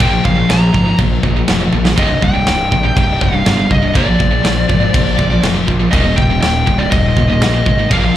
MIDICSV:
0, 0, Header, 1, 7, 480
1, 0, Start_track
1, 0, Tempo, 494234
1, 2, Time_signature, 4, 2, 24, 8
1, 7934, End_track
2, 0, Start_track
2, 0, Title_t, "Lead electric guitar"
2, 0, Program_c, 0, 29
2, 15, Note_on_c, 0, 79, 108
2, 232, Note_off_c, 0, 79, 0
2, 248, Note_on_c, 0, 77, 97
2, 492, Note_off_c, 0, 77, 0
2, 499, Note_on_c, 0, 82, 91
2, 937, Note_off_c, 0, 82, 0
2, 1935, Note_on_c, 0, 75, 105
2, 2171, Note_on_c, 0, 79, 122
2, 2175, Note_off_c, 0, 75, 0
2, 2880, Note_off_c, 0, 79, 0
2, 2891, Note_on_c, 0, 79, 114
2, 3127, Note_off_c, 0, 79, 0
2, 3131, Note_on_c, 0, 77, 101
2, 3573, Note_off_c, 0, 77, 0
2, 3612, Note_on_c, 0, 75, 95
2, 3830, Note_off_c, 0, 75, 0
2, 3855, Note_on_c, 0, 74, 93
2, 5250, Note_off_c, 0, 74, 0
2, 5745, Note_on_c, 0, 75, 108
2, 5984, Note_on_c, 0, 79, 126
2, 6001, Note_off_c, 0, 75, 0
2, 6218, Note_off_c, 0, 79, 0
2, 6230, Note_on_c, 0, 79, 107
2, 6588, Note_on_c, 0, 74, 103
2, 6607, Note_off_c, 0, 79, 0
2, 6705, Note_off_c, 0, 74, 0
2, 6709, Note_on_c, 0, 75, 109
2, 7050, Note_off_c, 0, 75, 0
2, 7088, Note_on_c, 0, 75, 113
2, 7647, Note_off_c, 0, 75, 0
2, 7700, Note_on_c, 0, 77, 107
2, 7934, Note_off_c, 0, 77, 0
2, 7934, End_track
3, 0, Start_track
3, 0, Title_t, "String section"
3, 0, Program_c, 1, 48
3, 1922, Note_on_c, 1, 48, 80
3, 1925, Note_on_c, 1, 63, 82
3, 1928, Note_on_c, 1, 55, 74
3, 1930, Note_on_c, 1, 62, 70
3, 3822, Note_off_c, 1, 48, 0
3, 3824, Note_off_c, 1, 63, 0
3, 3826, Note_off_c, 1, 55, 0
3, 3827, Note_off_c, 1, 62, 0
3, 3828, Note_on_c, 1, 74, 97
3, 3831, Note_on_c, 1, 58, 82
3, 3836, Note_on_c, 1, 65, 67
3, 3840, Note_on_c, 1, 72, 72
3, 5736, Note_off_c, 1, 74, 0
3, 5737, Note_off_c, 1, 58, 0
3, 5738, Note_off_c, 1, 65, 0
3, 5742, Note_off_c, 1, 72, 0
3, 5749, Note_on_c, 1, 65, 78
3, 5752, Note_on_c, 1, 67, 82
3, 5754, Note_on_c, 1, 51, 78
3, 5755, Note_on_c, 1, 58, 73
3, 7659, Note_off_c, 1, 67, 0
3, 7660, Note_off_c, 1, 51, 0
3, 7689, Note_on_c, 1, 74, 88
3, 7699, Note_on_c, 1, 72, 73
3, 7934, Note_off_c, 1, 58, 0
3, 7934, Note_off_c, 1, 65, 0
3, 7934, Note_off_c, 1, 72, 0
3, 7934, Note_off_c, 1, 74, 0
3, 7934, End_track
4, 0, Start_track
4, 0, Title_t, "Distorted electric guitar"
4, 0, Program_c, 2, 30
4, 2, Note_on_c, 2, 53, 104
4, 108, Note_off_c, 2, 53, 0
4, 7934, End_track
5, 0, Start_track
5, 0, Title_t, "Distorted electric guitar"
5, 0, Program_c, 3, 30
5, 0, Note_on_c, 3, 46, 105
5, 0, Note_on_c, 3, 58, 106
5, 97, Note_off_c, 3, 46, 0
5, 102, Note_on_c, 3, 53, 89
5, 107, Note_off_c, 3, 58, 0
5, 109, Note_on_c, 3, 46, 70
5, 216, Note_off_c, 3, 46, 0
5, 219, Note_off_c, 3, 53, 0
5, 228, Note_on_c, 3, 46, 64
5, 231, Note_on_c, 3, 53, 83
5, 330, Note_off_c, 3, 46, 0
5, 331, Note_off_c, 3, 53, 0
5, 342, Note_on_c, 3, 46, 76
5, 343, Note_on_c, 3, 53, 89
5, 463, Note_off_c, 3, 46, 0
5, 469, Note_off_c, 3, 53, 0
5, 475, Note_on_c, 3, 46, 78
5, 481, Note_on_c, 3, 53, 91
5, 694, Note_off_c, 3, 46, 0
5, 697, Note_off_c, 3, 53, 0
5, 710, Note_on_c, 3, 53, 94
5, 717, Note_on_c, 3, 46, 77
5, 818, Note_off_c, 3, 46, 0
5, 820, Note_off_c, 3, 53, 0
5, 830, Note_on_c, 3, 46, 75
5, 832, Note_on_c, 3, 53, 85
5, 947, Note_off_c, 3, 46, 0
5, 953, Note_off_c, 3, 53, 0
5, 959, Note_on_c, 3, 46, 73
5, 964, Note_on_c, 3, 53, 103
5, 1176, Note_off_c, 3, 46, 0
5, 1179, Note_off_c, 3, 53, 0
5, 1197, Note_on_c, 3, 53, 84
5, 1201, Note_on_c, 3, 46, 66
5, 1310, Note_off_c, 3, 53, 0
5, 1315, Note_off_c, 3, 46, 0
5, 1322, Note_on_c, 3, 53, 78
5, 1327, Note_on_c, 3, 46, 70
5, 1423, Note_off_c, 3, 46, 0
5, 1428, Note_off_c, 3, 53, 0
5, 1435, Note_on_c, 3, 46, 80
5, 1439, Note_on_c, 3, 53, 96
5, 1544, Note_off_c, 3, 53, 0
5, 1548, Note_off_c, 3, 46, 0
5, 1556, Note_on_c, 3, 53, 88
5, 1560, Note_on_c, 3, 46, 71
5, 1666, Note_off_c, 3, 53, 0
5, 1669, Note_off_c, 3, 46, 0
5, 1678, Note_on_c, 3, 53, 87
5, 1681, Note_on_c, 3, 46, 71
5, 1780, Note_off_c, 3, 53, 0
5, 1781, Note_off_c, 3, 46, 0
5, 1791, Note_on_c, 3, 53, 87
5, 1793, Note_on_c, 3, 46, 76
5, 1898, Note_off_c, 3, 46, 0
5, 1902, Note_on_c, 3, 36, 99
5, 1908, Note_off_c, 3, 53, 0
5, 1912, Note_on_c, 3, 43, 97
5, 1912, Note_on_c, 3, 48, 98
5, 2017, Note_off_c, 3, 36, 0
5, 2020, Note_off_c, 3, 43, 0
5, 2022, Note_off_c, 3, 48, 0
5, 2032, Note_on_c, 3, 43, 83
5, 2038, Note_on_c, 3, 36, 63
5, 2136, Note_off_c, 3, 43, 0
5, 2141, Note_off_c, 3, 36, 0
5, 2148, Note_on_c, 3, 43, 75
5, 2153, Note_on_c, 3, 36, 78
5, 2258, Note_off_c, 3, 43, 0
5, 2267, Note_off_c, 3, 36, 0
5, 2270, Note_on_c, 3, 43, 85
5, 2279, Note_on_c, 3, 36, 62
5, 2388, Note_off_c, 3, 36, 0
5, 2396, Note_off_c, 3, 43, 0
5, 2400, Note_on_c, 3, 36, 94
5, 2408, Note_on_c, 3, 43, 93
5, 2616, Note_off_c, 3, 36, 0
5, 2621, Note_off_c, 3, 43, 0
5, 2647, Note_on_c, 3, 43, 91
5, 2652, Note_on_c, 3, 36, 66
5, 2747, Note_off_c, 3, 43, 0
5, 2755, Note_off_c, 3, 36, 0
5, 2758, Note_on_c, 3, 43, 85
5, 2766, Note_on_c, 3, 36, 74
5, 2872, Note_off_c, 3, 36, 0
5, 2872, Note_off_c, 3, 43, 0
5, 2883, Note_on_c, 3, 36, 76
5, 2883, Note_on_c, 3, 43, 88
5, 3098, Note_off_c, 3, 36, 0
5, 3098, Note_off_c, 3, 43, 0
5, 3122, Note_on_c, 3, 43, 90
5, 3127, Note_on_c, 3, 36, 71
5, 3216, Note_off_c, 3, 43, 0
5, 3224, Note_off_c, 3, 36, 0
5, 3228, Note_on_c, 3, 43, 77
5, 3236, Note_on_c, 3, 36, 65
5, 3342, Note_off_c, 3, 36, 0
5, 3348, Note_off_c, 3, 43, 0
5, 3354, Note_on_c, 3, 36, 80
5, 3360, Note_on_c, 3, 43, 96
5, 3453, Note_off_c, 3, 43, 0
5, 3457, Note_off_c, 3, 36, 0
5, 3464, Note_on_c, 3, 43, 105
5, 3469, Note_on_c, 3, 36, 70
5, 3577, Note_off_c, 3, 43, 0
5, 3580, Note_off_c, 3, 36, 0
5, 3589, Note_on_c, 3, 43, 80
5, 3592, Note_on_c, 3, 36, 74
5, 3696, Note_off_c, 3, 43, 0
5, 3697, Note_off_c, 3, 36, 0
5, 3707, Note_on_c, 3, 43, 90
5, 3709, Note_on_c, 3, 36, 67
5, 3817, Note_off_c, 3, 36, 0
5, 3821, Note_on_c, 3, 46, 91
5, 3829, Note_off_c, 3, 43, 0
5, 3833, Note_on_c, 3, 53, 97
5, 3835, Note_on_c, 3, 58, 111
5, 3937, Note_off_c, 3, 46, 0
5, 3940, Note_off_c, 3, 53, 0
5, 3944, Note_off_c, 3, 58, 0
5, 3949, Note_on_c, 3, 46, 68
5, 3951, Note_on_c, 3, 53, 83
5, 4054, Note_off_c, 3, 53, 0
5, 4055, Note_off_c, 3, 46, 0
5, 4066, Note_on_c, 3, 53, 79
5, 4067, Note_on_c, 3, 46, 66
5, 4172, Note_off_c, 3, 53, 0
5, 4178, Note_off_c, 3, 46, 0
5, 4183, Note_on_c, 3, 53, 81
5, 4190, Note_on_c, 3, 46, 70
5, 4293, Note_off_c, 3, 46, 0
5, 4299, Note_off_c, 3, 53, 0
5, 4304, Note_on_c, 3, 46, 83
5, 4311, Note_on_c, 3, 53, 90
5, 4529, Note_off_c, 3, 46, 0
5, 4532, Note_off_c, 3, 53, 0
5, 4550, Note_on_c, 3, 53, 94
5, 4552, Note_on_c, 3, 46, 70
5, 4650, Note_off_c, 3, 53, 0
5, 4651, Note_off_c, 3, 46, 0
5, 4662, Note_on_c, 3, 46, 75
5, 4662, Note_on_c, 3, 53, 92
5, 4789, Note_off_c, 3, 46, 0
5, 4792, Note_off_c, 3, 53, 0
5, 4801, Note_on_c, 3, 46, 87
5, 4805, Note_on_c, 3, 53, 97
5, 5009, Note_off_c, 3, 53, 0
5, 5017, Note_off_c, 3, 46, 0
5, 5021, Note_on_c, 3, 53, 92
5, 5029, Note_on_c, 3, 46, 65
5, 5137, Note_off_c, 3, 53, 0
5, 5146, Note_off_c, 3, 46, 0
5, 5149, Note_on_c, 3, 53, 92
5, 5158, Note_on_c, 3, 46, 73
5, 5254, Note_off_c, 3, 46, 0
5, 5254, Note_off_c, 3, 53, 0
5, 5266, Note_on_c, 3, 46, 79
5, 5266, Note_on_c, 3, 53, 102
5, 5372, Note_off_c, 3, 53, 0
5, 5376, Note_off_c, 3, 46, 0
5, 5384, Note_on_c, 3, 53, 79
5, 5388, Note_on_c, 3, 46, 69
5, 5489, Note_off_c, 3, 53, 0
5, 5491, Note_off_c, 3, 46, 0
5, 5500, Note_on_c, 3, 53, 93
5, 5503, Note_on_c, 3, 46, 72
5, 5620, Note_off_c, 3, 53, 0
5, 5625, Note_off_c, 3, 46, 0
5, 5632, Note_on_c, 3, 53, 92
5, 5637, Note_on_c, 3, 46, 85
5, 5728, Note_off_c, 3, 46, 0
5, 5736, Note_off_c, 3, 53, 0
5, 5736, Note_on_c, 3, 39, 97
5, 5740, Note_on_c, 3, 46, 102
5, 5749, Note_on_c, 3, 51, 106
5, 5851, Note_off_c, 3, 46, 0
5, 5854, Note_off_c, 3, 39, 0
5, 5861, Note_off_c, 3, 51, 0
5, 5862, Note_on_c, 3, 46, 80
5, 5867, Note_on_c, 3, 39, 60
5, 5973, Note_off_c, 3, 46, 0
5, 5981, Note_off_c, 3, 39, 0
5, 5985, Note_on_c, 3, 46, 88
5, 5992, Note_on_c, 3, 39, 75
5, 6107, Note_off_c, 3, 46, 0
5, 6110, Note_off_c, 3, 39, 0
5, 6119, Note_on_c, 3, 46, 96
5, 6122, Note_on_c, 3, 39, 70
5, 6228, Note_off_c, 3, 39, 0
5, 6233, Note_off_c, 3, 46, 0
5, 6240, Note_on_c, 3, 39, 87
5, 6245, Note_on_c, 3, 46, 87
5, 6457, Note_off_c, 3, 39, 0
5, 6457, Note_off_c, 3, 46, 0
5, 6469, Note_on_c, 3, 46, 100
5, 6475, Note_on_c, 3, 39, 76
5, 6581, Note_off_c, 3, 46, 0
5, 6587, Note_off_c, 3, 39, 0
5, 6592, Note_on_c, 3, 46, 99
5, 6599, Note_on_c, 3, 39, 79
5, 6703, Note_off_c, 3, 39, 0
5, 6709, Note_off_c, 3, 46, 0
5, 6715, Note_on_c, 3, 39, 87
5, 6721, Note_on_c, 3, 46, 90
5, 6934, Note_off_c, 3, 39, 0
5, 6938, Note_off_c, 3, 46, 0
5, 6968, Note_on_c, 3, 46, 74
5, 6969, Note_on_c, 3, 39, 69
5, 7075, Note_off_c, 3, 46, 0
5, 7078, Note_off_c, 3, 39, 0
5, 7086, Note_on_c, 3, 46, 85
5, 7090, Note_on_c, 3, 39, 71
5, 7192, Note_off_c, 3, 39, 0
5, 7194, Note_off_c, 3, 46, 0
5, 7203, Note_on_c, 3, 39, 92
5, 7206, Note_on_c, 3, 46, 96
5, 7302, Note_off_c, 3, 46, 0
5, 7311, Note_off_c, 3, 39, 0
5, 7314, Note_on_c, 3, 46, 96
5, 7322, Note_on_c, 3, 39, 79
5, 7432, Note_off_c, 3, 46, 0
5, 7439, Note_off_c, 3, 39, 0
5, 7443, Note_on_c, 3, 46, 83
5, 7451, Note_on_c, 3, 39, 72
5, 7555, Note_off_c, 3, 46, 0
5, 7558, Note_off_c, 3, 39, 0
5, 7567, Note_on_c, 3, 46, 95
5, 7569, Note_on_c, 3, 39, 72
5, 7667, Note_off_c, 3, 46, 0
5, 7675, Note_off_c, 3, 39, 0
5, 7679, Note_on_c, 3, 46, 102
5, 7691, Note_on_c, 3, 53, 95
5, 7691, Note_on_c, 3, 58, 105
5, 7786, Note_off_c, 3, 46, 0
5, 7789, Note_off_c, 3, 53, 0
5, 7793, Note_off_c, 3, 58, 0
5, 7801, Note_on_c, 3, 53, 85
5, 7804, Note_on_c, 3, 46, 62
5, 7900, Note_off_c, 3, 53, 0
5, 7907, Note_off_c, 3, 46, 0
5, 7934, End_track
6, 0, Start_track
6, 0, Title_t, "Picked electric bass"
6, 0, Program_c, 4, 34
6, 0, Note_on_c, 4, 34, 98
6, 184, Note_off_c, 4, 34, 0
6, 244, Note_on_c, 4, 34, 100
6, 426, Note_off_c, 4, 34, 0
6, 494, Note_on_c, 4, 34, 100
6, 672, Note_off_c, 4, 34, 0
6, 718, Note_on_c, 4, 32, 92
6, 902, Note_off_c, 4, 32, 0
6, 957, Note_on_c, 4, 34, 90
6, 1142, Note_off_c, 4, 34, 0
6, 1199, Note_on_c, 4, 34, 97
6, 1383, Note_off_c, 4, 34, 0
6, 1453, Note_on_c, 4, 29, 103
6, 1632, Note_off_c, 4, 29, 0
6, 1687, Note_on_c, 4, 34, 97
6, 1868, Note_off_c, 4, 34, 0
6, 1917, Note_on_c, 4, 24, 85
6, 2102, Note_off_c, 4, 24, 0
6, 2161, Note_on_c, 4, 24, 97
6, 2344, Note_off_c, 4, 24, 0
6, 2406, Note_on_c, 4, 24, 98
6, 2587, Note_off_c, 4, 24, 0
6, 2642, Note_on_c, 4, 34, 90
6, 2824, Note_off_c, 4, 34, 0
6, 2878, Note_on_c, 4, 24, 104
6, 3062, Note_off_c, 4, 24, 0
6, 3120, Note_on_c, 4, 24, 89
6, 3304, Note_off_c, 4, 24, 0
6, 3364, Note_on_c, 4, 31, 103
6, 3546, Note_off_c, 4, 31, 0
6, 3603, Note_on_c, 4, 24, 101
6, 3785, Note_off_c, 4, 24, 0
6, 3842, Note_on_c, 4, 34, 90
6, 4025, Note_off_c, 4, 34, 0
6, 4077, Note_on_c, 4, 34, 104
6, 4262, Note_off_c, 4, 34, 0
6, 4316, Note_on_c, 4, 34, 96
6, 4501, Note_off_c, 4, 34, 0
6, 4559, Note_on_c, 4, 32, 98
6, 4743, Note_off_c, 4, 32, 0
6, 4803, Note_on_c, 4, 34, 95
6, 4985, Note_off_c, 4, 34, 0
6, 5041, Note_on_c, 4, 34, 97
6, 5224, Note_off_c, 4, 34, 0
6, 5277, Note_on_c, 4, 29, 107
6, 5461, Note_off_c, 4, 29, 0
6, 5519, Note_on_c, 4, 34, 100
6, 5703, Note_off_c, 4, 34, 0
6, 5758, Note_on_c, 4, 27, 86
6, 5942, Note_off_c, 4, 27, 0
6, 6004, Note_on_c, 4, 27, 100
6, 6186, Note_off_c, 4, 27, 0
6, 6240, Note_on_c, 4, 27, 97
6, 6424, Note_off_c, 4, 27, 0
6, 6478, Note_on_c, 4, 24, 95
6, 6663, Note_off_c, 4, 24, 0
6, 6721, Note_on_c, 4, 27, 95
6, 6904, Note_off_c, 4, 27, 0
6, 6955, Note_on_c, 4, 27, 92
6, 7141, Note_off_c, 4, 27, 0
6, 7198, Note_on_c, 4, 34, 105
6, 7383, Note_off_c, 4, 34, 0
6, 7443, Note_on_c, 4, 32, 108
6, 7626, Note_off_c, 4, 32, 0
6, 7680, Note_on_c, 4, 34, 89
6, 7864, Note_off_c, 4, 34, 0
6, 7934, End_track
7, 0, Start_track
7, 0, Title_t, "Drums"
7, 3, Note_on_c, 9, 36, 120
7, 3, Note_on_c, 9, 49, 75
7, 100, Note_off_c, 9, 36, 0
7, 101, Note_off_c, 9, 49, 0
7, 244, Note_on_c, 9, 36, 101
7, 341, Note_off_c, 9, 36, 0
7, 484, Note_on_c, 9, 38, 114
7, 484, Note_on_c, 9, 49, 63
7, 581, Note_off_c, 9, 38, 0
7, 581, Note_off_c, 9, 49, 0
7, 722, Note_on_c, 9, 36, 85
7, 819, Note_off_c, 9, 36, 0
7, 956, Note_on_c, 9, 49, 66
7, 959, Note_on_c, 9, 36, 115
7, 1053, Note_off_c, 9, 49, 0
7, 1056, Note_off_c, 9, 36, 0
7, 1198, Note_on_c, 9, 36, 102
7, 1295, Note_off_c, 9, 36, 0
7, 1438, Note_on_c, 9, 38, 121
7, 1438, Note_on_c, 9, 49, 64
7, 1535, Note_off_c, 9, 38, 0
7, 1535, Note_off_c, 9, 49, 0
7, 1676, Note_on_c, 9, 48, 73
7, 1773, Note_off_c, 9, 48, 0
7, 1798, Note_on_c, 9, 38, 95
7, 1895, Note_off_c, 9, 38, 0
7, 1920, Note_on_c, 9, 36, 116
7, 1923, Note_on_c, 9, 49, 71
7, 2017, Note_off_c, 9, 36, 0
7, 2020, Note_off_c, 9, 49, 0
7, 2160, Note_on_c, 9, 36, 97
7, 2257, Note_off_c, 9, 36, 0
7, 2398, Note_on_c, 9, 38, 109
7, 2398, Note_on_c, 9, 49, 57
7, 2495, Note_off_c, 9, 38, 0
7, 2495, Note_off_c, 9, 49, 0
7, 2641, Note_on_c, 9, 36, 88
7, 2738, Note_off_c, 9, 36, 0
7, 2881, Note_on_c, 9, 36, 120
7, 2889, Note_on_c, 9, 49, 69
7, 2979, Note_off_c, 9, 36, 0
7, 2986, Note_off_c, 9, 49, 0
7, 3121, Note_on_c, 9, 36, 98
7, 3218, Note_off_c, 9, 36, 0
7, 3363, Note_on_c, 9, 38, 126
7, 3363, Note_on_c, 9, 49, 64
7, 3460, Note_off_c, 9, 38, 0
7, 3460, Note_off_c, 9, 49, 0
7, 3601, Note_on_c, 9, 36, 92
7, 3698, Note_off_c, 9, 36, 0
7, 3840, Note_on_c, 9, 36, 117
7, 3842, Note_on_c, 9, 49, 69
7, 3937, Note_off_c, 9, 36, 0
7, 3939, Note_off_c, 9, 49, 0
7, 4080, Note_on_c, 9, 36, 94
7, 4177, Note_off_c, 9, 36, 0
7, 4320, Note_on_c, 9, 38, 105
7, 4320, Note_on_c, 9, 49, 66
7, 4417, Note_off_c, 9, 38, 0
7, 4417, Note_off_c, 9, 49, 0
7, 4560, Note_on_c, 9, 36, 88
7, 4657, Note_off_c, 9, 36, 0
7, 4800, Note_on_c, 9, 36, 118
7, 4806, Note_on_c, 9, 49, 73
7, 4897, Note_off_c, 9, 36, 0
7, 4903, Note_off_c, 9, 49, 0
7, 5039, Note_on_c, 9, 36, 98
7, 5136, Note_off_c, 9, 36, 0
7, 5279, Note_on_c, 9, 38, 110
7, 5279, Note_on_c, 9, 49, 73
7, 5376, Note_off_c, 9, 38, 0
7, 5376, Note_off_c, 9, 49, 0
7, 5518, Note_on_c, 9, 36, 89
7, 5615, Note_off_c, 9, 36, 0
7, 5759, Note_on_c, 9, 36, 127
7, 5764, Note_on_c, 9, 49, 70
7, 5856, Note_off_c, 9, 36, 0
7, 5861, Note_off_c, 9, 49, 0
7, 6000, Note_on_c, 9, 36, 98
7, 6097, Note_off_c, 9, 36, 0
7, 6241, Note_on_c, 9, 38, 112
7, 6241, Note_on_c, 9, 49, 59
7, 6338, Note_off_c, 9, 38, 0
7, 6338, Note_off_c, 9, 49, 0
7, 6481, Note_on_c, 9, 36, 82
7, 6578, Note_off_c, 9, 36, 0
7, 6719, Note_on_c, 9, 49, 63
7, 6721, Note_on_c, 9, 36, 118
7, 6816, Note_off_c, 9, 49, 0
7, 6818, Note_off_c, 9, 36, 0
7, 6960, Note_on_c, 9, 36, 94
7, 7057, Note_off_c, 9, 36, 0
7, 7204, Note_on_c, 9, 38, 123
7, 7204, Note_on_c, 9, 49, 67
7, 7301, Note_off_c, 9, 38, 0
7, 7301, Note_off_c, 9, 49, 0
7, 7442, Note_on_c, 9, 36, 93
7, 7539, Note_off_c, 9, 36, 0
7, 7682, Note_on_c, 9, 36, 120
7, 7682, Note_on_c, 9, 49, 75
7, 7779, Note_off_c, 9, 36, 0
7, 7779, Note_off_c, 9, 49, 0
7, 7934, End_track
0, 0, End_of_file